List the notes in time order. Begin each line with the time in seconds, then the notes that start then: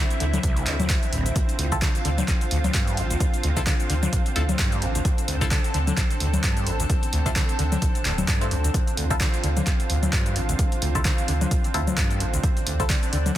Already playing: D3 C4 E4
0.10 closed hi-hat, cabasa
0.20 D2 D3, open hi-hat
0.33 D3, closed hi-hat, low conga, cabasa
0.43 C2, kick, closed hi-hat, cabasa
0.57 closed hi-hat, cabasa
0.66 D2, clap, open hi-hat
0.80 D2, closed hi-hat, low conga, cabasa
0.90 D2, kick, clap, closed hi-hat, cabasa
1.03 closed hi-hat, cabasa
1.13 D1 A1, open hi-hat
1.26 D1, closed hi-hat, cabasa
1.36 D2 F4, kick, closed hi-hat, cabasa
1.49 closed hi-hat, cabasa
1.59 D2, open hi-hat
1.72 D3 C4 E4 F4 A4, kick, closed hi-hat, cabasa
1.82 D3, kick, clap, closed hi-hat, cabasa
1.95 closed hi-hat, cabasa
2.05 D2 D3, open hi-hat
2.18 D3, closed hi-hat, low conga, cabasa
2.28 C2, kick, clap, closed hi-hat, cabasa
2.41 closed hi-hat, cabasa
2.51 D2, open hi-hat
2.64 D2, closed hi-hat, low conga, cabasa
2.74 G2, kick, clap, closed hi-hat, cabasa
2.87 closed hi-hat, cabasa
2.97 A1 F2, open hi-hat
3.10 D2, closed hi-hat, cabasa
3.20 D2, kick, closed hi-hat, cabasa
3.34 closed hi-hat, cabasa
3.43 D2, open hi-hat
3.57 D3 C4 E4 F4 A4, kick, closed hi-hat, cabasa
3.67 D3, kick, clap, closed hi-hat, cabasa
3.80 closed hi-hat, cabasa
3.90 D2 D3, open hi-hat
4.03 D3, closed hi-hat, low conga, cabasa
4.13 C2, kick, closed hi-hat, cabasa
4.26 closed hi-hat, cabasa
4.36 D2 C4 E4 F4 A4, open hi-hat
4.49 D2, closed hi-hat, low conga, cabasa
4.59 G2, kick, clap, closed hi-hat, cabasa
4.72 closed hi-hat, cabasa
4.82 A1 F2, open hi-hat
4.95 D2, closed hi-hat, cabasa
5.05 D2 A4, kick, closed hi-hat, cabasa
5.18 closed hi-hat, cabasa
5.28 D2, open hi-hat
5.41 D3 C4 E4 F4 A4, kick, closed hi-hat, cabasa
5.51 D3, kick, clap, closed hi-hat, cabasa
5.64 closed hi-hat, cabasa
5.74 D2 D3, open hi-hat
5.87 D3, closed hi-hat, low conga, cabasa
5.97 C2, kick, clap, closed hi-hat, cabasa
6.10 closed hi-hat, cabasa
6.20 D2, open hi-hat
6.33 D2, closed hi-hat, low conga, cabasa
6.43 G2, kick, clap, closed hi-hat, cabasa
6.57 closed hi-hat, cabasa
6.67 A1 F2, open hi-hat
6.80 D2, closed hi-hat, cabasa
6.90 D2, kick, closed hi-hat, cabasa
7.03 closed hi-hat, cabasa
7.13 D2, open hi-hat
7.26 D3 C4 E4 F4 A4, kick, closed hi-hat, cabasa
7.36 D3, kick, clap, closed hi-hat, cabasa
7.49 closed hi-hat, cabasa
7.59 D2 D3, open hi-hat
7.72 D3, closed hi-hat, low conga, cabasa
7.82 C2, kick, closed hi-hat, cabasa
7.95 closed hi-hat, cabasa
8.05 D1 D2, clap, open hi-hat
8.18 D2, closed hi-hat, low conga, cabasa
8.28 G2, kick, clap, closed hi-hat, cabasa
8.41 C4 E4 F4 A4, closed hi-hat, cabasa
8.51 D2 F2, open hi-hat
8.64 D2, closed hi-hat, cabasa
8.74 D2 F4, kick, closed hi-hat, cabasa
8.87 closed hi-hat, cabasa
8.97 D2, open hi-hat
9.10 D3 C4 E4 F4 A4, kick, closed hi-hat, cabasa
9.20 D3, kick, clap, closed hi-hat, cabasa
9.34 closed hi-hat, cabasa
9.43 D2 D3, open hi-hat
9.57 D3, closed hi-hat, low conga, cabasa
9.67 C2, kick, clap, closed hi-hat, cabasa
9.80 closed hi-hat, cabasa
9.90 D2, open hi-hat
10.03 D2, closed hi-hat, low conga, cabasa
10.13 G2, kick, clap, closed hi-hat, cabasa
10.26 closed hi-hat, cabasa
10.36 A1 F2, open hi-hat
10.49 D2, closed hi-hat, cabasa
10.59 D2, kick, closed hi-hat, cabasa
10.72 closed hi-hat, cabasa
10.82 D2, open hi-hat
10.95 D3 C4 E4 F4 A4, kick, closed hi-hat, cabasa
11.05 D3, kick, clap, closed hi-hat, cabasa
11.18 closed hi-hat, cabasa
11.28 D2 D3, open hi-hat
11.41 D3, closed hi-hat, low conga, cabasa
11.51 C2, kick, closed hi-hat, cabasa
11.64 closed hi-hat, cabasa
11.74 D2 C4 E4 F4 A4, open hi-hat
11.87 D2, closed hi-hat, low conga, cabasa
11.97 G2, kick, clap, closed hi-hat, cabasa
12.10 closed hi-hat, cabasa
12.20 A1 F2, open hi-hat
12.34 D2, closed hi-hat, cabasa
12.44 D2 D4, kick, closed hi-hat, cabasa
12.57 closed hi-hat, cabasa
12.67 D2, open hi-hat
12.80 D3 C4 E4 F4 A4, kick, closed hi-hat, cabasa
12.90 D3, kick, clap, closed hi-hat, cabasa
13.03 closed hi-hat, cabasa
13.13 D2 D3, open hi-hat
13.26 D3, closed hi-hat, low conga, cabasa